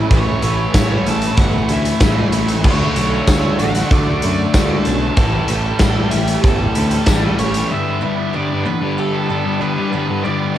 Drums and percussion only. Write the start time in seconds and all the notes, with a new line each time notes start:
0.11 kick, closed hi-hat
0.42 closed hi-hat
0.74 kick, snare, closed hi-hat, tambourine
1.06 closed hi-hat
1.22 closed hi-hat
1.37 kick, closed hi-hat
1.69 closed hi-hat
1.85 closed hi-hat
2.00 kick, snare, closed hi-hat, tambourine
2.32 closed hi-hat
2.48 closed hi-hat
2.64 kick, crash
2.96 closed hi-hat
3.27 kick, snare, closed hi-hat, tambourine
3.59 closed hi-hat
3.75 snare, closed hi-hat
3.91 kick, closed hi-hat
4.22 closed hi-hat
4.54 kick, snare, closed hi-hat, tambourine
4.85 closed hi-hat
5.17 kick, closed hi-hat
5.48 closed hi-hat
5.79 kick, snare, closed hi-hat, tambourine
6.11 closed hi-hat
6.28 closed hi-hat
6.44 kick, closed hi-hat
6.75 closed hi-hat
6.91 closed hi-hat
7.06 kick, snare, closed hi-hat, tambourine
7.39 closed hi-hat
7.54 closed hi-hat